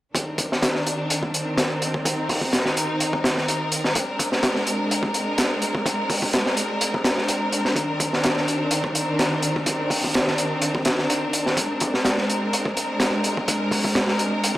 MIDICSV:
0, 0, Header, 1, 3, 480
1, 0, Start_track
1, 0, Key_signature, -3, "minor"
1, 0, Tempo, 476190
1, 148, Time_signature, 4, 2, 24, 8
1, 14696, End_track
2, 0, Start_track
2, 0, Title_t, "String section"
2, 0, Program_c, 0, 48
2, 148, Note_on_c, 0, 51, 76
2, 149, Note_on_c, 0, 62, 72
2, 151, Note_on_c, 0, 60, 73
2, 152, Note_on_c, 0, 70, 88
2, 2049, Note_off_c, 0, 62, 0
2, 2070, Note_on_c, 0, 63, 74
2, 3950, Note_off_c, 0, 51, 0
2, 3952, Note_off_c, 0, 60, 0
2, 3970, Note_off_c, 0, 63, 0
2, 3983, Note_on_c, 0, 60, 73
2, 3984, Note_on_c, 0, 56, 78
2, 3984, Note_on_c, 0, 62, 75
2, 7788, Note_off_c, 0, 56, 0
2, 7823, Note_on_c, 0, 51, 81
2, 11627, Note_off_c, 0, 51, 0
2, 11630, Note_off_c, 0, 70, 0
2, 11666, Note_on_c, 0, 70, 91
2, 11668, Note_on_c, 0, 56, 82
2, 14696, Note_off_c, 0, 56, 0
2, 14696, Note_off_c, 0, 60, 0
2, 14696, Note_off_c, 0, 62, 0
2, 14696, Note_off_c, 0, 70, 0
2, 14696, End_track
3, 0, Start_track
3, 0, Title_t, "Drums"
3, 147, Note_on_c, 9, 36, 92
3, 154, Note_on_c, 9, 42, 74
3, 248, Note_off_c, 9, 36, 0
3, 255, Note_off_c, 9, 42, 0
3, 384, Note_on_c, 9, 36, 82
3, 384, Note_on_c, 9, 42, 66
3, 485, Note_off_c, 9, 36, 0
3, 485, Note_off_c, 9, 42, 0
3, 525, Note_on_c, 9, 38, 36
3, 626, Note_off_c, 9, 38, 0
3, 629, Note_on_c, 9, 38, 116
3, 630, Note_on_c, 9, 42, 80
3, 730, Note_off_c, 9, 38, 0
3, 731, Note_off_c, 9, 42, 0
3, 756, Note_on_c, 9, 38, 37
3, 856, Note_off_c, 9, 38, 0
3, 872, Note_on_c, 9, 42, 59
3, 973, Note_off_c, 9, 42, 0
3, 1111, Note_on_c, 9, 42, 91
3, 1212, Note_off_c, 9, 42, 0
3, 1237, Note_on_c, 9, 36, 82
3, 1338, Note_off_c, 9, 36, 0
3, 1352, Note_on_c, 9, 42, 59
3, 1453, Note_off_c, 9, 42, 0
3, 1588, Note_on_c, 9, 38, 102
3, 1592, Note_on_c, 9, 42, 83
3, 1688, Note_off_c, 9, 38, 0
3, 1693, Note_off_c, 9, 42, 0
3, 1833, Note_on_c, 9, 42, 61
3, 1934, Note_off_c, 9, 42, 0
3, 1958, Note_on_c, 9, 36, 89
3, 2059, Note_off_c, 9, 36, 0
3, 2070, Note_on_c, 9, 36, 96
3, 2071, Note_on_c, 9, 42, 90
3, 2171, Note_off_c, 9, 36, 0
3, 2172, Note_off_c, 9, 42, 0
3, 2311, Note_on_c, 9, 46, 74
3, 2313, Note_on_c, 9, 36, 80
3, 2411, Note_off_c, 9, 46, 0
3, 2414, Note_off_c, 9, 36, 0
3, 2434, Note_on_c, 9, 36, 82
3, 2535, Note_off_c, 9, 36, 0
3, 2548, Note_on_c, 9, 38, 111
3, 2550, Note_on_c, 9, 42, 79
3, 2649, Note_off_c, 9, 38, 0
3, 2651, Note_off_c, 9, 42, 0
3, 2676, Note_on_c, 9, 38, 51
3, 2776, Note_off_c, 9, 38, 0
3, 2791, Note_on_c, 9, 42, 69
3, 2892, Note_off_c, 9, 42, 0
3, 3028, Note_on_c, 9, 42, 74
3, 3129, Note_off_c, 9, 42, 0
3, 3157, Note_on_c, 9, 36, 91
3, 3258, Note_off_c, 9, 36, 0
3, 3267, Note_on_c, 9, 38, 108
3, 3277, Note_on_c, 9, 42, 60
3, 3368, Note_off_c, 9, 38, 0
3, 3378, Note_off_c, 9, 42, 0
3, 3401, Note_on_c, 9, 38, 39
3, 3501, Note_off_c, 9, 38, 0
3, 3511, Note_on_c, 9, 42, 77
3, 3612, Note_off_c, 9, 42, 0
3, 3747, Note_on_c, 9, 42, 69
3, 3848, Note_off_c, 9, 42, 0
3, 3874, Note_on_c, 9, 38, 42
3, 3975, Note_off_c, 9, 38, 0
3, 3984, Note_on_c, 9, 42, 87
3, 3989, Note_on_c, 9, 36, 100
3, 4085, Note_off_c, 9, 42, 0
3, 4090, Note_off_c, 9, 36, 0
3, 4227, Note_on_c, 9, 36, 81
3, 4230, Note_on_c, 9, 42, 68
3, 4328, Note_off_c, 9, 36, 0
3, 4331, Note_off_c, 9, 42, 0
3, 4354, Note_on_c, 9, 38, 36
3, 4455, Note_off_c, 9, 38, 0
3, 4464, Note_on_c, 9, 42, 79
3, 4465, Note_on_c, 9, 38, 117
3, 4564, Note_off_c, 9, 42, 0
3, 4566, Note_off_c, 9, 38, 0
3, 4591, Note_on_c, 9, 38, 38
3, 4692, Note_off_c, 9, 38, 0
3, 4705, Note_on_c, 9, 42, 67
3, 4806, Note_off_c, 9, 42, 0
3, 4951, Note_on_c, 9, 42, 82
3, 5052, Note_off_c, 9, 42, 0
3, 5067, Note_on_c, 9, 36, 97
3, 5168, Note_off_c, 9, 36, 0
3, 5183, Note_on_c, 9, 42, 63
3, 5284, Note_off_c, 9, 42, 0
3, 5422, Note_on_c, 9, 42, 87
3, 5427, Note_on_c, 9, 38, 103
3, 5523, Note_off_c, 9, 42, 0
3, 5528, Note_off_c, 9, 38, 0
3, 5663, Note_on_c, 9, 42, 69
3, 5763, Note_off_c, 9, 42, 0
3, 5792, Note_on_c, 9, 36, 86
3, 5893, Note_off_c, 9, 36, 0
3, 5903, Note_on_c, 9, 36, 105
3, 5907, Note_on_c, 9, 42, 75
3, 6004, Note_off_c, 9, 36, 0
3, 6008, Note_off_c, 9, 42, 0
3, 6144, Note_on_c, 9, 46, 72
3, 6145, Note_on_c, 9, 36, 83
3, 6245, Note_off_c, 9, 46, 0
3, 6246, Note_off_c, 9, 36, 0
3, 6272, Note_on_c, 9, 36, 85
3, 6373, Note_off_c, 9, 36, 0
3, 6384, Note_on_c, 9, 42, 89
3, 6388, Note_on_c, 9, 38, 111
3, 6484, Note_off_c, 9, 42, 0
3, 6489, Note_off_c, 9, 38, 0
3, 6515, Note_on_c, 9, 38, 46
3, 6615, Note_off_c, 9, 38, 0
3, 6621, Note_on_c, 9, 42, 66
3, 6722, Note_off_c, 9, 42, 0
3, 6864, Note_on_c, 9, 42, 86
3, 6965, Note_off_c, 9, 42, 0
3, 6998, Note_on_c, 9, 36, 92
3, 7098, Note_off_c, 9, 36, 0
3, 7101, Note_on_c, 9, 38, 111
3, 7106, Note_on_c, 9, 42, 62
3, 7201, Note_off_c, 9, 38, 0
3, 7207, Note_off_c, 9, 42, 0
3, 7236, Note_on_c, 9, 38, 38
3, 7337, Note_off_c, 9, 38, 0
3, 7342, Note_on_c, 9, 42, 88
3, 7442, Note_off_c, 9, 42, 0
3, 7585, Note_on_c, 9, 42, 64
3, 7686, Note_off_c, 9, 42, 0
3, 7712, Note_on_c, 9, 38, 40
3, 7813, Note_off_c, 9, 38, 0
3, 7820, Note_on_c, 9, 36, 100
3, 7824, Note_on_c, 9, 42, 76
3, 7921, Note_off_c, 9, 36, 0
3, 7925, Note_off_c, 9, 42, 0
3, 8064, Note_on_c, 9, 36, 85
3, 8064, Note_on_c, 9, 42, 63
3, 8165, Note_off_c, 9, 36, 0
3, 8165, Note_off_c, 9, 42, 0
3, 8196, Note_on_c, 9, 38, 35
3, 8297, Note_off_c, 9, 38, 0
3, 8301, Note_on_c, 9, 42, 76
3, 8312, Note_on_c, 9, 38, 123
3, 8402, Note_off_c, 9, 42, 0
3, 8412, Note_off_c, 9, 38, 0
3, 8437, Note_on_c, 9, 38, 39
3, 8538, Note_off_c, 9, 38, 0
3, 8547, Note_on_c, 9, 42, 58
3, 8648, Note_off_c, 9, 42, 0
3, 8777, Note_on_c, 9, 42, 90
3, 8878, Note_off_c, 9, 42, 0
3, 8909, Note_on_c, 9, 36, 91
3, 9010, Note_off_c, 9, 36, 0
3, 9022, Note_on_c, 9, 42, 68
3, 9122, Note_off_c, 9, 42, 0
3, 9264, Note_on_c, 9, 42, 81
3, 9267, Note_on_c, 9, 38, 99
3, 9365, Note_off_c, 9, 42, 0
3, 9368, Note_off_c, 9, 38, 0
3, 9500, Note_on_c, 9, 42, 63
3, 9601, Note_off_c, 9, 42, 0
3, 9638, Note_on_c, 9, 36, 86
3, 9739, Note_off_c, 9, 36, 0
3, 9739, Note_on_c, 9, 42, 86
3, 9741, Note_on_c, 9, 36, 97
3, 9840, Note_off_c, 9, 42, 0
3, 9842, Note_off_c, 9, 36, 0
3, 9982, Note_on_c, 9, 36, 88
3, 9985, Note_on_c, 9, 46, 77
3, 10083, Note_off_c, 9, 36, 0
3, 10086, Note_off_c, 9, 46, 0
3, 10122, Note_on_c, 9, 36, 93
3, 10222, Note_off_c, 9, 36, 0
3, 10223, Note_on_c, 9, 42, 82
3, 10234, Note_on_c, 9, 38, 109
3, 10324, Note_off_c, 9, 42, 0
3, 10334, Note_off_c, 9, 38, 0
3, 10355, Note_on_c, 9, 38, 47
3, 10455, Note_off_c, 9, 38, 0
3, 10464, Note_on_c, 9, 42, 67
3, 10565, Note_off_c, 9, 42, 0
3, 10701, Note_on_c, 9, 42, 86
3, 10801, Note_off_c, 9, 42, 0
3, 10832, Note_on_c, 9, 36, 97
3, 10933, Note_off_c, 9, 36, 0
3, 10936, Note_on_c, 9, 42, 61
3, 10943, Note_on_c, 9, 38, 108
3, 11037, Note_off_c, 9, 42, 0
3, 11044, Note_off_c, 9, 38, 0
3, 11068, Note_on_c, 9, 38, 41
3, 11168, Note_off_c, 9, 38, 0
3, 11187, Note_on_c, 9, 42, 83
3, 11288, Note_off_c, 9, 42, 0
3, 11423, Note_on_c, 9, 42, 68
3, 11524, Note_off_c, 9, 42, 0
3, 11555, Note_on_c, 9, 38, 46
3, 11656, Note_off_c, 9, 38, 0
3, 11662, Note_on_c, 9, 36, 109
3, 11664, Note_on_c, 9, 42, 87
3, 11762, Note_off_c, 9, 36, 0
3, 11765, Note_off_c, 9, 42, 0
3, 11898, Note_on_c, 9, 42, 69
3, 11909, Note_on_c, 9, 36, 97
3, 11999, Note_off_c, 9, 42, 0
3, 12009, Note_off_c, 9, 36, 0
3, 12034, Note_on_c, 9, 38, 35
3, 12135, Note_off_c, 9, 38, 0
3, 12142, Note_on_c, 9, 38, 114
3, 12148, Note_on_c, 9, 42, 84
3, 12243, Note_off_c, 9, 38, 0
3, 12249, Note_off_c, 9, 42, 0
3, 12272, Note_on_c, 9, 38, 38
3, 12373, Note_off_c, 9, 38, 0
3, 12394, Note_on_c, 9, 42, 59
3, 12495, Note_off_c, 9, 42, 0
3, 12632, Note_on_c, 9, 42, 79
3, 12733, Note_off_c, 9, 42, 0
3, 12756, Note_on_c, 9, 36, 97
3, 12857, Note_off_c, 9, 36, 0
3, 12870, Note_on_c, 9, 42, 63
3, 12971, Note_off_c, 9, 42, 0
3, 13101, Note_on_c, 9, 38, 111
3, 13103, Note_on_c, 9, 42, 76
3, 13202, Note_off_c, 9, 38, 0
3, 13204, Note_off_c, 9, 42, 0
3, 13345, Note_on_c, 9, 42, 68
3, 13446, Note_off_c, 9, 42, 0
3, 13481, Note_on_c, 9, 36, 88
3, 13582, Note_off_c, 9, 36, 0
3, 13587, Note_on_c, 9, 42, 83
3, 13590, Note_on_c, 9, 36, 109
3, 13688, Note_off_c, 9, 42, 0
3, 13691, Note_off_c, 9, 36, 0
3, 13823, Note_on_c, 9, 36, 96
3, 13826, Note_on_c, 9, 46, 86
3, 13924, Note_off_c, 9, 36, 0
3, 13927, Note_off_c, 9, 46, 0
3, 13953, Note_on_c, 9, 36, 96
3, 14054, Note_off_c, 9, 36, 0
3, 14064, Note_on_c, 9, 38, 110
3, 14068, Note_on_c, 9, 42, 82
3, 14165, Note_off_c, 9, 38, 0
3, 14169, Note_off_c, 9, 42, 0
3, 14191, Note_on_c, 9, 38, 51
3, 14292, Note_off_c, 9, 38, 0
3, 14305, Note_on_c, 9, 42, 60
3, 14406, Note_off_c, 9, 42, 0
3, 14551, Note_on_c, 9, 42, 86
3, 14652, Note_off_c, 9, 42, 0
3, 14696, End_track
0, 0, End_of_file